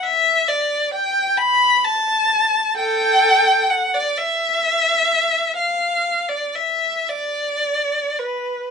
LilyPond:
\new Staff \with { instrumentName = "Violin" } { \time 6/8 \key e \minor \tempo 4. = 43 e''8 d''8 g''8 b''8 a''4 | <a' g''>4 fis''16 d''16 e''4. | f''8. d''16 e''8 d''4 b'8 | }